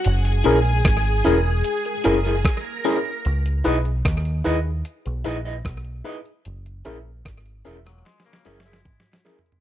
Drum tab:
HH |x--x--x--x--x--x--x-----x--x--x--x--x--x--x--x--|x--x--x--x--x--x--x-----x--x--x--x--x--x--x--x--|x--x--x-----x--x--x--x--x--x--x--x--x--x--x--x--|
SD |------------r-----------------------r-----------|------------r-----------------------r-----------|------------r--------r--o-o-o-o-o-o---o-o-o-----|
T2 |------------------------------------------------|------------------------------------------------|------------------------------------o-----------|
FT |------------------------------------------------|------------------------------------------------|--------------------------------------------o-o-|
BD |------------o-----------------------o-----------|------------o-----------------------o-----------|------------o-----------------------o-----------|